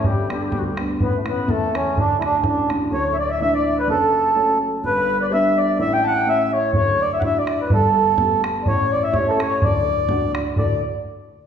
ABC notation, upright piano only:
X:1
M:2/4
L:1/8
Q:"Swing" 1/4=126
K:D
V:1 name="Upright piano" clef=bass
[G,,,G,,] [G,B,D] D,, [G,B,D] | [A,,,A,,] [E,A,C] E,, [E,A,C] | [D,,,D,,] [F,A,D] A,,, [F,A,D] | [D,,,D,,]2 [E,A,D]2 |
[F,,,F,,]2 [F,A,C]2 | [G,,,G,,]2 [G,B,D]2 | [A,,,A,,]2 [A,CE]2 | [D,,,D,,]2 [F,DE]2 |
[G,,,G,,]2 [A,B,G]2 | [A,,,A,,]2 [A,CG]2 | [D,,,D,,]2 [A,DF]2 | [D,,A,,D,A,FA] z3 |]